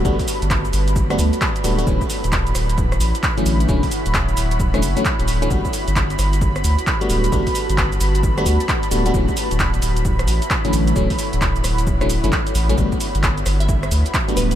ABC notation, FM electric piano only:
X:1
M:4/4
L:1/16
Q:"Swing 16ths" 1/4=132
K:Glyd
V:1 name="FM electric piano"
[G,A,B,DF] z8 [G,A,B,DF] [G,A,B,D] z3 [G,A,B,DF] [G,A,B,DF] | [D,E,F,A,C] z12 [D,E,F,A,C]3 | [D,E,F,A,C] z8 [D,E,F,A,C] z [D,E,F,A,C] z3 [D,E,F,A,C] | [G,A,B,DF] z12 [G,A,B,DF]3 |
[G,A,B,DF] z8 [G,A,B,DF] [G,A,B,DF] z3 [G,A,B,DF] [G,A,B,DF] | [D,E,F,A,C] z12 [D,E,F,A,C]3 | [D,E,F,A,C] z8 [D,E,F,A,C] z [D,E,F,A,C] z3 [D,E,F,A,C] | [G,A,B,DF] z12 [G,A,B,DF]3 |]